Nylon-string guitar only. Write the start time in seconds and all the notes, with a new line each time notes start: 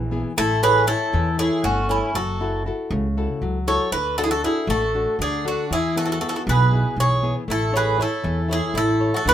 Already playing: E3
0.11 B3 E4 G#4
0.37 A3
0.63 E4 A4 C#5
0.88 E4 A4 C#5
1.14 E3
1.38 E4 A4 C#5
1.65 A3
1.90 E4 A4 C#5
2.15 F#3
2.41 E4 F#4 A4
2.66 E4 F#4 A4
2.92 C#3
3.17 E4 F#4 A4
3.42 F#3
3.68 E4 F#4 A4
3.93 D3
4.18 D4 F#4 A4
4.44 D4 F#4 A4
4.69 A3
4.95 D4 F#4 A4
5.19 D3
5.45 D4 F#4 A4
5.71 E3
5.96 B3 E4 G#4
6.21 B3 E4 G#4
6.48 B2
6.72 B3 E4 G#4
6.98 E3
7.23 B3 E4 G#4
7.48 A3
7.73 E4 A4 C#5
7.98 E4 A4 C#5
8.24 E3
8.48 E4 A4 C#5
8.74 A3
9.00 E4 A4 C#5
9.26 D3